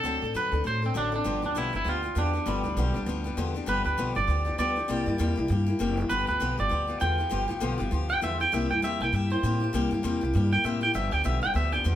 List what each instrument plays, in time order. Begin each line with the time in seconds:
Already playing: clean electric guitar A4
0.03 upright bass D2, steel-string acoustic guitar D3 F#3 C4 D4 A4
0.22 upright bass A2, steel-string acoustic guitar C4 D4 A4
0.34 upright bass F#2, steel-string acoustic guitar D3 F#3 C4 D4 A4, clean electric guitar B4
0.52 upright bass D2, steel-string acoustic guitar C4 D4 A4
0.64 upright bass A2, steel-string acoustic guitar F#3 C4 D4 A4, clean electric guitar C5
0.82 steel-string acoustic guitar C4 D4 A4
0.86 clean electric guitar C4
0.94 upright bass A1, steel-string acoustic guitar D3 F#3 C4 D4 A4, clean electric guitar D4
1.12 steel-string acoustic guitar C4 D4 A4, clean electric guitar D4
1.24 upright bass G1, steel-string acoustic guitar G2 D3 F3 B3 D4 G4
1.42 upright bass D2, steel-string acoustic guitar F3 B3 D4 G4, clean electric guitar D4
1.55 upright bass B1, steel-string acoustic guitar G2 D3 F3 B3 D4 G4, clean electric guitar E4
1.73 upright bass G1, steel-string acoustic guitar F3 B3 D4 G4, clean electric guitar E4
1.84 upright bass D2, steel-string acoustic guitar F3 B3 D4 G4
1.89 clean electric guitar F4
2.03 steel-string acoustic guitar F3 B3 D4 G4
2.15 upright bass E2, steel-string acoustic guitar G2 D3 F3 B3 D4 G4, clean electric guitar D4
2.33 steel-string acoustic guitar F3 B3 D4 G4
2.46 upright bass G1, steel-string acoustic guitar G2 D3 F3 B3 D4 G4, clean electric guitar G3
2.63 upright bass D2, steel-string acoustic guitar F3 B3 D4 G4
2.76 upright bass B1, steel-string acoustic guitar G2 D3 F3 B3 D4 G4
2.94 upright bass G1, steel-string acoustic guitar F3 B3 D4 G4
3.06 upright bass D2, steel-string acoustic guitar F3 B3 D4 G4
3.24 steel-string acoustic guitar F3 B3 D4 G4
3.37 upright bass E2, steel-string acoustic guitar G2 D3 F3 B3 D4 G4
3.54 steel-string acoustic guitar F3 B3 D4 G4
3.66 upright bass G1, steel-string acoustic guitar G2 D3 F3 B3 D4 G4, clean electric guitar B4
3.85 upright bass D2, steel-string acoustic guitar F3 B3 D4 G4, clean electric guitar B4
3.98 upright bass B1, steel-string acoustic guitar G2 D3 F3 B3 D4 G4
4.15 upright bass G1, steel-string acoustic guitar F3 B3 D4 G4, clean electric guitar D5
4.27 upright bass D2, steel-string acoustic guitar F3 B3 D4 G4
4.45 steel-string acoustic guitar F3 B3 D4 G4
4.58 upright bass D2, steel-string acoustic guitar G2 D3 F3 B3 D4 G4, clean electric guitar D5
4.76 steel-string acoustic guitar F3 B3 D4 G4
4.88 upright bass C2, steel-string acoustic guitar C3 G3 A#3 E4 G4
5.06 upright bass G2, steel-string acoustic guitar A#3 E4 G4
5.18 upright bass E2, steel-string acoustic guitar C3 G3 A#3 E4 G4
5.36 upright bass C2, steel-string acoustic guitar A#3 E4 G4
5.48 upright bass G2, steel-string acoustic guitar G3 A#3 E4 G4
5.66 steel-string acoustic guitar A#3 E4 G4
5.79 upright bass F#1, steel-string acoustic guitar C3 G3 A#3 E4 G4
5.97 steel-string acoustic guitar E4 G4
6.09 upright bass G1, steel-string acoustic guitar G2 D3 F3 B3 F4 G4, clean electric guitar B4
6.27 upright bass D2, steel-string acoustic guitar F3 B3 F4 G4, clean electric guitar B4
6.40 upright bass B1, steel-string acoustic guitar G2 D3 F3 B3 F4 G4
6.58 upright bass G1, steel-string acoustic guitar F3 B3 F4 G4, clean electric guitar D5
6.69 upright bass D2, steel-string acoustic guitar F3 B3 F4 G4
6.87 steel-string acoustic guitar F3 B3 F4 G4
7.00 upright bass E2, steel-string acoustic guitar G2 D3 F3 B3 F4 G4, clean electric guitar G5
7.18 steel-string acoustic guitar F3 B3 F4 G4
7.30 upright bass G1, steel-string acoustic guitar G2 D3 F3 B3 F4 G4
7.48 upright bass D2, steel-string acoustic guitar F3 B3 F4 G4
7.60 upright bass B1, steel-string acoustic guitar G2 D3 F3 B3 F4 G4
7.78 upright bass G1, steel-string acoustic guitar F3 B3 F4 G4
7.91 upright bass D2, steel-string acoustic guitar F3 B3 F4 G4
8.09 steel-string acoustic guitar F3 B3 F4 G4, clean electric guitar G5
8.21 upright bass E2, steel-string acoustic guitar G2 D3 F3 B3 F4 G4, clean electric guitar E5
8.40 steel-string acoustic guitar F3 B3 F4 G4, clean electric guitar G5
8.52 upright bass C2, steel-string acoustic guitar C3 G3 A#3 E4 G4, clean electric guitar E5
8.70 upright bass G2, steel-string acoustic guitar E4 G4, clean electric guitar G5
8.82 upright bass E2, steel-string acoustic guitar C3 G3 A#3 E4 G4, clean electric guitar E5
9.00 upright bass C2, steel-string acoustic guitar A#3 E4 G4, clean electric guitar G5
9.12 upright bass G2, steel-string acoustic guitar G3 A#3 E4 G4, clean electric guitar E5
9.30 steel-string acoustic guitar A#3 E4 G4, clean electric guitar C5
9.43 upright bass A2, steel-string acoustic guitar C3 G3 A#3 E4 G4
9.60 steel-string acoustic guitar A#3 E4 G4
9.73 upright bass C2, steel-string acoustic guitar C3 G3 A#3 E4 G4
9.91 upright bass G2, steel-string acoustic guitar A#3 E4 G4
10.03 upright bass E2, steel-string acoustic guitar C3 G3 A#3 E4 G4
10.21 upright bass C2, steel-string acoustic guitar A#3 E4 G4
10.33 upright bass G2, steel-string acoustic guitar G3 A#3 E4 G4
10.52 steel-string acoustic guitar A#3 E4 G4, clean electric guitar G5
10.64 upright bass A2, steel-string acoustic guitar C3 G3 A#3 E4 G4, clean electric guitar E5
10.81 steel-string acoustic guitar A#3 E4 G4, clean electric guitar G5
10.94 upright bass G1, steel-string acoustic guitar G2 D3 F3 B3 D4 G4, clean electric guitar E5
11.11 upright bass D2, steel-string acoustic guitar F3 B3 D4 G4, clean electric guitar G5
11.24 upright bass B1, steel-string acoustic guitar G2 D3 F3 B3 D4 G4, clean electric guitar E5
11.42 upright bass G1, steel-string acoustic guitar F3 B3 D4 G4, clean electric guitar G5
11.54 upright bass D2, steel-string acoustic guitar F3 B3 D4 G4, clean electric guitar E5
11.72 steel-string acoustic guitar F3 B3 D4 G4, clean electric guitar G5
11.84 upright bass E2, steel-string acoustic guitar G2 D3 F3 B3 D4 G4